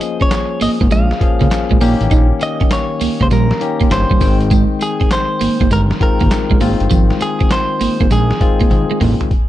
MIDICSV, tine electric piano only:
0, 0, Header, 1, 2, 480
1, 0, Start_track
1, 0, Tempo, 600000
1, 1687, Time_signature, 4, 2, 24, 8
1, 7590, End_track
2, 0, Start_track
2, 0, Title_t, "Tine electric piano"
2, 0, Program_c, 0, 4
2, 0, Control_c, 0, 64, 127
2, 0, Note_on_c, 0, 53, 78
2, 0, Note_on_c, 0, 58, 70
2, 0, Note_on_c, 0, 61, 72
2, 0, Note_on_c, 0, 68, 82
2, 414, Note_off_c, 0, 53, 0
2, 415, Note_off_c, 0, 58, 0
2, 417, Note_off_c, 0, 61, 0
2, 419, Note_off_c, 0, 68, 0
2, 963, Note_on_c, 0, 53, 80
2, 967, Note_on_c, 0, 58, 73
2, 970, Note_on_c, 0, 61, 73
2, 973, Note_on_c, 0, 68, 85
2, 1432, Note_off_c, 0, 53, 0
2, 1434, Note_off_c, 0, 58, 0
2, 1436, Note_off_c, 0, 61, 0
2, 1437, Note_off_c, 0, 68, 0
2, 1445, Note_on_c, 0, 51, 99
2, 1447, Note_on_c, 0, 58, 92
2, 1452, Note_on_c, 0, 61, 90
2, 1454, Note_on_c, 0, 67, 108
2, 1458, Control_c, 0, 64, 0
2, 1589, Control_c, 0, 64, 127
2, 2230, Note_off_c, 0, 51, 0
2, 2230, Note_off_c, 0, 58, 0
2, 2233, Note_off_c, 0, 61, 0
2, 2234, Note_off_c, 0, 67, 0
2, 2884, Note_on_c, 0, 51, 77
2, 2886, Note_on_c, 0, 58, 70
2, 2891, Note_on_c, 0, 61, 76
2, 2893, Note_on_c, 0, 67, 86
2, 3353, Note_off_c, 0, 51, 0
2, 3354, Note_off_c, 0, 58, 0
2, 3356, Note_off_c, 0, 61, 0
2, 3357, Note_off_c, 0, 67, 0
2, 3361, Note_on_c, 0, 51, 84
2, 3365, Note_on_c, 0, 56, 81
2, 3368, Note_on_c, 0, 60, 76
2, 3371, Note_on_c, 0, 79, 89
2, 3379, Control_c, 0, 64, 0
2, 3539, Control_c, 0, 64, 127
2, 4148, Note_off_c, 0, 51, 0
2, 4149, Note_off_c, 0, 56, 0
2, 4151, Note_off_c, 0, 60, 0
2, 4153, Note_off_c, 0, 79, 0
2, 4801, Note_on_c, 0, 51, 84
2, 4805, Note_on_c, 0, 56, 70
2, 4808, Note_on_c, 0, 60, 72
2, 4810, Note_on_c, 0, 65, 85
2, 5271, Note_off_c, 0, 51, 0
2, 5273, Note_off_c, 0, 56, 0
2, 5275, Note_off_c, 0, 60, 0
2, 5276, Note_off_c, 0, 65, 0
2, 5282, Note_on_c, 0, 51, 83
2, 5285, Note_on_c, 0, 55, 61
2, 5287, Note_on_c, 0, 60, 76
2, 5291, Note_on_c, 0, 65, 99
2, 5298, Control_c, 0, 64, 0
2, 5336, Note_on_c, 0, 56, 74
2, 5354, Note_off_c, 0, 55, 0
2, 5444, Control_c, 0, 64, 127
2, 6068, Note_off_c, 0, 51, 0
2, 6071, Note_off_c, 0, 60, 0
2, 6072, Note_off_c, 0, 65, 0
2, 6095, Note_off_c, 0, 56, 0
2, 6722, Note_on_c, 0, 51, 76
2, 6725, Note_on_c, 0, 56, 77
2, 6729, Note_on_c, 0, 60, 70
2, 6731, Note_on_c, 0, 65, 88
2, 7192, Note_off_c, 0, 51, 0
2, 7193, Note_off_c, 0, 56, 0
2, 7195, Note_off_c, 0, 60, 0
2, 7196, Note_off_c, 0, 65, 0
2, 7458, Control_c, 0, 64, 0
2, 7590, End_track
0, 0, End_of_file